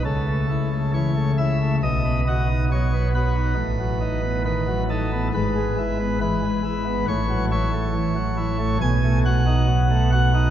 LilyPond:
<<
  \new Staff \with { instrumentName = "Pipe organ" } { \time 4/4 \key b \mixolydian \tempo 4 = 68 a'4 cis''8 e''8 dis''8 dis''8 cis''8 b'8~ | b'4 b'8 a'8 b'4 b'4 | cis''8 cis''4. gis''8 fis''4 fis''8 | }
  \new Staff \with { instrumentName = "Pipe organ" } { \time 4/4 \key b \mixolydian << { cis16 a16 e'16 a16 e16 a16 e'16 a16 b,16 b16 fis'16 dis'16 fis16 b16 fis'16 dis'16 | a,16 fis16 dis'16 b16 dis16 fis16 dis'16 b16 gis,16 gis16 e'16 b16 e16 gis16 e'16 b16 | a,16 fis16 e'16 a16 e16 fis16 e'16 a16 b,16 a16 fis'16 dis'16 fis16 a16 fis'16 dis'16 | } \\ { cis,2 b,,2 | a,,2 gis,,2 | a,,2 b,,2 | } >> }
>>